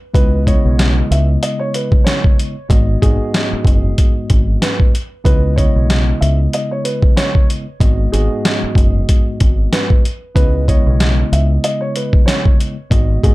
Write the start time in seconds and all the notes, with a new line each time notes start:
0.13 C#2 C#3 G#3 B3 E4 B4 D#5, kick, closed hi-hat
0.47 C#3 G#3 B3 E4 C#5 D#5, kick, closed hi-hat
0.65 B1
0.79 snare, closed hi-hat
1.11 C#2 E5, closed hi-hat
1.43 D#5, closed hi-hat
1.59 C#5
1.74 B4, closed hi-hat
1.92 kick
2.04 C#5, snare, closed hi-hat
2.24 kick
2.39 closed hi-hat
2.69 G#1 G#2 G#3 B3 F#4 D#5, kick, closed hi-hat
3.02 G#1 G#2 G#3 B3 F#4 G#4 D#5, kick, closed hi-hat
3.34 snare, closed hi-hat
3.53 muted fingered electric bass stroke
3.65 F#1, kick, closed hi-hat
3.98 kick, closed hi-hat
4.30 G#1, kick, closed hi-hat
4.62 B4, snare, closed hi-hat
4.80 kick
4.95 closed hi-hat
5.24 C#2 C#3 G#3 B3 E4 B4 D#5, kick, closed hi-hat
5.56 C#3 G#3 B3 E4 C#5 D#5, kick, closed hi-hat
5.76 B1
5.90 snare, closed hi-hat
6.21 C#2 E5, closed hi-hat
6.53 D#5, closed hi-hat
6.71 C#5
6.84 B4, closed hi-hat
7.03 kick
7.17 C#5, snare, closed hi-hat
7.35 kick
7.50 closed hi-hat
7.80 G#1 G#2 G#3 B3 F#4 D#5, kick, closed hi-hat
8.12 G#1 G#2 G#3 B3 F#4 G#4 D#5, closed hi-hat
8.45 snare, closed hi-hat
8.63 muted fingered electric bass stroke
8.75 F#1, kick, closed hi-hat
9.09 kick, closed hi-hat
9.40 G#1, kick, closed hi-hat
9.72 B4, snare, closed hi-hat
9.90 kick
10.05 closed hi-hat
10.35 C#2 C#3 G#3 B3 E4 B4 D#5, kick, closed hi-hat
10.68 C#3 G#3 B3 E4 C#5 D#5, kick, closed hi-hat
10.87 B1
11.00 snare, closed hi-hat
11.32 C#2 E5, closed hi-hat
11.64 D#5, closed hi-hat
11.81 C#5
11.96 B4, closed hi-hat
12.13 kick
12.26 C#5, snare, closed hi-hat
12.46 kick
12.60 closed hi-hat
12.90 G#1 G#2 G#3 B3 F#4 D#5, kick, closed hi-hat
13.23 G#1 G#2 G#3 B3 F#4 G#4 D#5, kick, closed hi-hat